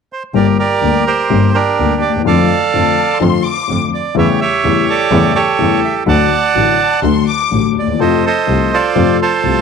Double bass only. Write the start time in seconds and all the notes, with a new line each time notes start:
0.35 G1
0.83 D2
1.31 G1
1.79 D2
2.03 D#2
2.27 F2
2.74 F2
3.22 F2
3.70 F2
4.17 E2
4.64 E2
5.12 E2
5.59 E2
6.07 D2
6.55 A1
7.03 D2
7.51 A1
7.76 D#2
8.00 F2
8.48 C2
8.96 F2
9.44 C2